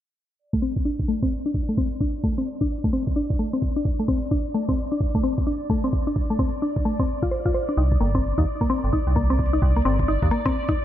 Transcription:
0.39 D5
0.53 A3, kick, closed hi-hat
0.62 C4
0.76 kick, closed hi-hat
0.85 D4
0.99 kick, closed hi-hat
1.08 A3
1.22 C4, kick, closed hi-hat
1.27 closed hi-hat
1.38 closed hi-hat
1.46 D4
1.54 kick
1.69 A3, closed hi-hat
1.77 C4, kick
2.00 D4, kick
2.15 closed hi-hat
2.24 A3, kick
2.38 C4, closed hi-hat
2.61 D4, kick, closed hi-hat
2.84 A3, kick, closed hi-hat
2.93 C4
3.07 kick
3.16 D4
3.30 kick, closed hi-hat
3.39 A3
3.53 C4, closed hi-hat
3.62 kick
3.76 D4, closed hi-hat
3.85 kick
3.99 A3, closed hi-hat
4.08 C4, kick
4.23 closed hi-hat
4.31 D4, kick
4.46 closed hi-hat
4.48 closed hi-hat
4.50 closed hi-hat
4.54 A3, closed hi-hat
4.62 closed hi-hat
4.65 C4, kick, closed hi-hat
4.69 closed hi-hat
4.92 D4, closed hi-hat
5.00 kick
5.15 A3, kick
5.23 C4
5.38 kick, closed hi-hat
5.47 D4
5.70 A3, kick
5.84 C4, closed hi-hat
5.93 kick
6.07 D4, closed hi-hat
6.16 kick
6.30 A3
6.39 C4, kick
6.53 closed hi-hat
6.62 D4
6.76 kick, closed hi-hat
6.85 A3
6.99 C4, kick, closed hi-hat
7.22 F4, kick, closed hi-hat
7.31 C5
7.46 F4, kick
7.54 C5
7.69 D4, closed hi-hat
7.77 C2 D#4
7.92 kick, closed hi-hat
8.00 G1 A#3
8.15 C4, kick, closed hi-hat
8.38 D#2 D#4, kick, closed hi-hat
8.61 A#3, kick, closed hi-hat
8.70 C4
8.84 G1
8.93 D#4, kick
9.07 C2, closed hi-hat
9.16 A#3, kick
9.30 C4
9.39 kick
9.46 closed hi-hat
9.53 D#4
9.62 C2, kick
9.76 A#3, closed hi-hat
9.82 G1 C4, closed hi-hat
9.90 closed hi-hat
9.99 kick, closed hi-hat
10.08 D#4
10.22 D#2, kick
10.31 A#3, closed hi-hat
10.46 C4, kick, closed hi-hat
10.69 D#4, kick, closed hi-hat

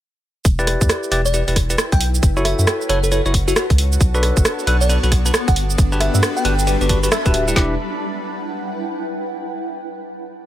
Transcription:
0.45 E1 E4, kick, closed hi-hat, shaker
0.59 E4 G4 B4 D5, shaker
0.67 cross-stick, open hi-hat
0.81 E2, kick, shaker
0.89 cross-stick, closed hi-hat, shaker
0.97 B4
1.03 shaker
1.12 E1 E4 G4 B4 D5, open hi-hat
1.25 D5 G5, closed hi-hat, shaker
1.34 E4 G4 B4 D5, closed hi-hat, shaker
1.48 E1 E4 G4 B4 D5, open hi-hat, shaker
1.56 kick, cross-stick, open hi-hat
1.70 E4 G4 B4 D5, closed hi-hat, shaker
1.78 cross-stick, closed hi-hat, shaker
1.92 B1 G5, kick, closed hi-hat, shaker
2.01 open hi-hat
2.15 shaker
2.23 F#1 F#4, kick, closed hi-hat, shaker
2.37 E4 F#4 A4 C#5, shaker
2.44 C#5 E5 F#5, cross-stick, open hi-hat
2.59 F#2 E5, shaker
2.67 cross-stick, closed hi-hat, shaker
2.81 shaker
2.89 F#1 E4 F#4 A4 C#5, open hi-hat
3.03 A4 A5, closed hi-hat, shaker
3.12 E4 F#4 A4 C#5, closed hi-hat, shaker
3.26 F#1 E4 F#4 A4 C#5, closed hi-hat, shaker
3.34 kick, open hi-hat
3.48 E4 F#4 A4 C#5, closed hi-hat, shaker
3.56 F#4, cross-stick, closed hi-hat, shaker
3.70 C#2, kick, closed hi-hat, shaker
3.78 open hi-hat
3.92 shaker
4.00 B1 B3 D4 A4 C#5, kick, closed hi-hat, shaker
4.15 D4 F#4 A4 B4, shaker
4.23 cross-stick, open hi-hat
4.37 F#1, kick, shaker
4.45 cross-stick, closed hi-hat, shaker
4.59 shaker
4.67 B1 D4 F#4 A4 B4, open hi-hat
4.72 D4
4.81 D5, closed hi-hat, shaker
4.89 D4 F#4 A4 B4, closed hi-hat, shaker
5.03 B1 D4 F#4 A4 B4, open hi-hat, shaker
5.12 kick, cross-stick, open hi-hat
5.26 D4 F#4 A4 B4, closed hi-hat, shaker
5.34 cross-stick, closed hi-hat, shaker
5.48 G1 F#5, kick, closed hi-hat, shaker
5.56 G3 A4 B4, open hi-hat
5.70 shaker
5.78 G1 A5, kick, closed hi-hat, shaker
5.84 B5
5.92 D4 F#4 G4 B4, shaker
6.01 E5, cross-stick, open hi-hat
6.14 G2 E5, shaker
6.23 cross-stick, closed hi-hat, shaker
6.37 G5, shaker
6.45 G1 D4 F#4 G4 B4, open hi-hat
6.59 closed hi-hat, shaker
6.67 D4 F#4 G4 B4, closed hi-hat, shaker
6.81 G1 D4 F#4 G4 B4, closed hi-hat, shaker
6.89 D4 F#4 G4 B4, kick, open hi-hat
7.03 D4 F#4 G4 B4, closed hi-hat, shaker
7.12 E5, cross-stick, closed hi-hat, shaker
7.26 D1 D4 F#4 G4 B4, kick, closed hi-hat, shaker
7.34 open hi-hat
7.48 E4 G4 B4 D5, shaker
7.56 E1 D4 E4 G4 B4, kick, snare
7.64 B4
7.72 F#5
7.77 G5

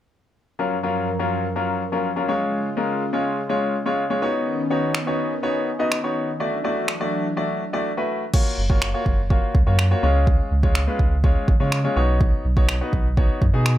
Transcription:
0.59 F#2 F3 F#3 C#4 F4 A#4
0.83 F#3 C#4 F4 A#4
1.19 F#3 C#4 F4 A#4
1.56 F#3 C#4 F4 A#4
1.92 F#3 C#4 F4 A#4
2.16 F#3 C#4 F4 A#4
2.28 C#3 G#3 C#4 F4 C#5
2.77 G#3 C#4 F4 A#4
3.13 G#3 C#4 F4 C#5
3.49 G#3 C#4 F4 C#5
3.86 G#3 C#4 F4 C#5
4.10 G#3 C#4 F4 C#5
4.22 D#3 B3 C#4 D#4 F#4 C#5
4.70 B3 D#4 F#4 C#5
4.95 finger snap
5.07 B3 D#4 F#4 C#5
5.43 B3 D#4 F#4 C#5
5.79 B3 D#4 F#4 D#5
5.92 finger snap
6.03 B3 D#4 F#4 C#5
6.40 E3 F#3 A3 D4 E4 F#4 D5
6.64 A3 E4 F#4 D5
6.88 finger snap
7.00 A3 E4 F#4 D5
7.37 A3 E4 F#4 D5
7.73 A3 E4 F#4 D5
7.97 A3 E4 F#4 B4
8.34 A#3 F4 F#4 C#5, kick, crash
8.58 F#1
8.69 A#3 F4 F#4 C#5, kick
8.82 finger snap
8.94 A#3 F4 F#4 C#5
9.06 F#1, kick
9.30 A#3 F4 F#4 C#5, kick
9.55 C#2, kick
9.66 F#2 A#3 F4 F#4 C#5
9.79 finger snap
9.91 A#3 F4 F#4 C#5
10.03 C#2 G#3 C#4 F4 C#5
10.27 kick
10.51 C#2
10.63 G#3 C#4 F4 C#5, kick
10.75 finger snap
10.87 G#3 C#4 F4 B4
10.99 C#2, kick
11.24 G#3 C#4 F4 C#5, kick
11.48 G#1, kick
11.60 C#3 G#3 C#4 F4 C#5
11.72 finger snap
11.84 G#3 C#4 F4 C#5
11.96 B1 B3 D#4 F#4 C#5
12.21 kick
12.45 B1
12.57 B3 D#4 F#4 C#5, kick
12.69 finger snap
12.81 B3 D#4 F#4 B4
12.93 B1, kick
13.17 B3 D#4 F#4 C#5, kick
13.42 F#2, kick
13.53 B2 B3 D#4 F#4 G#4
13.66 finger snap

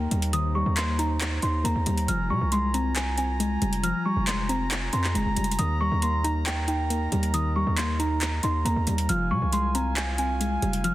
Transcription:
Already playing: A#3 D#4 A#4 G5 A#5, downlifter
0.11 D#2 G3, closed hi-hat
0.22 closed hi-hat
0.33 D#3 C5 D#6, closed hi-hat
0.55 G3 C#6
0.66 D#2
0.77 A#3 C6, clap, closed hi-hat
0.99 D#4 A#5, closed hi-hat
1.21 clap, closed hi-hat
1.42 D#2 D#4 C6, closed hi-hat
1.64 D#2 A#3 A#5, closed hi-hat
1.76 D#2
1.86 D#2 G3, closed hi-hat, open hi-hat
1.98 closed hi-hat
2.08 F1 F3 F4 G#5 F6, closed hi-hat
2.30 C3 G3 C#6
2.41 C2
2.52 G#3 C6, closed hi-hat
2.74 C4 A#5, closed hi-hat
2.96 G#5, clap, closed hi-hat
3.18 C4 G#5, closed hi-hat
3.40 G#3, closed hi-hat
3.62 F1 G3, closed hi-hat
3.73 closed hi-hat
3.83 F3 F6, closed hi-hat
4.05 G3 C#6
4.16 F1
4.27 G#3 C6, clap, closed hi-hat
4.49 C4 A#5, closed hi-hat
4.71 clap, closed hi-hat
4.93 F2 C4 C6, closed hi-hat
5.04 clap
5.14 F1 G#3 A#5, closed hi-hat
5.26 F1
5.36 F1 G3, closed hi-hat, open hi-hat
5.44 closed hi-hat
5.51 closed hi-hat
5.59 D#2 D#3 D#4 A#4 D#6, closed hi-hat
5.81 G3 C#6
5.92 D#2
6.02 A#3 C6, closed hi-hat
6.24 D#4 A#5, closed hi-hat
6.46 G5, clap, closed hi-hat
6.68 D#4 G5, closed hi-hat
6.90 A#3, closed hi-hat
7.12 D#2 G3, closed hi-hat
7.23 closed hi-hat
7.34 D#3 D#6, closed hi-hat
7.56 G3 C#6
7.67 D#2
7.77 A#3 C6, clap, closed hi-hat
7.99 D#4 A#5, closed hi-hat
8.21 clap, closed hi-hat
8.43 D#2 D#4 C6, closed hi-hat
8.65 D#2 A#3 A#5, closed hi-hat
8.76 D#2
8.87 D#2 G3, closed hi-hat, open hi-hat
8.98 closed hi-hat
9.09 F1 F3 F4 F5 G#5 F6, closed hi-hat
9.31 C3 G3 C#6
9.42 C2
9.53 G#3 C6, closed hi-hat
9.75 C4 A#5, closed hi-hat
9.96 G#5, clap, closed hi-hat
10.18 C4 G#5, closed hi-hat
10.40 G#3, closed hi-hat
10.62 F1 G3, closed hi-hat
10.73 closed hi-hat
10.84 F3 F6, closed hi-hat

